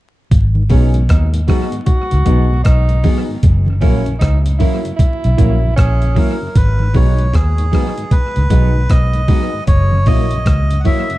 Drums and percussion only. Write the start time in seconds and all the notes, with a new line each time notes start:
0.31 kick, closed hi-hat, low conga
0.55 high conga
0.70 kick, open hi-hat
0.94 closed hi-hat
1.09 kick, cross-stick, closed hi-hat
1.34 closed hi-hat
1.48 kick, cross-stick, open hi-hat, high conga
1.72 closed hi-hat
1.86 kick, closed hi-hat, low conga
2.11 closed hi-hat
2.26 kick, closed hi-hat, low conga
2.65 kick, cross-stick, closed hi-hat
2.89 closed hi-hat
3.04 kick, open hi-hat, high conga
3.43 kick, closed hi-hat, low conga
3.66 high conga
3.81 kick, open hi-hat
4.06 closed hi-hat
4.21 kick, cross-stick, closed hi-hat
4.46 closed hi-hat
4.60 kick, open hi-hat, high conga
4.85 closed hi-hat
4.99 kick, closed hi-hat, low conga
5.24 closed hi-hat
5.38 kick, closed hi-hat, low conga
5.78 kick, cross-stick, closed hi-hat
6.02 closed hi-hat
6.16 kick, open hi-hat, high conga
6.55 kick, closed hi-hat, low conga
6.79 high conga
6.94 kick, open hi-hat
7.19 closed hi-hat
7.33 kick, cross-stick, closed hi-hat, high conga
7.58 closed hi-hat
7.72 kick, cross-stick, open hi-hat, high conga
7.98 closed hi-hat
8.11 kick, closed hi-hat, low conga
8.36 closed hi-hat
8.50 kick, closed hi-hat, low conga
8.89 kick, cross-stick, closed hi-hat, high conga
9.13 closed hi-hat
9.28 kick, open hi-hat, low conga
9.67 kick, closed hi-hat, low conga
9.92 high conga
10.06 kick, open hi-hat
10.31 closed hi-hat
10.46 kick, cross-stick, closed hi-hat, high conga
10.71 closed hi-hat
10.85 kick, open hi-hat, high conga
11.10 closed hi-hat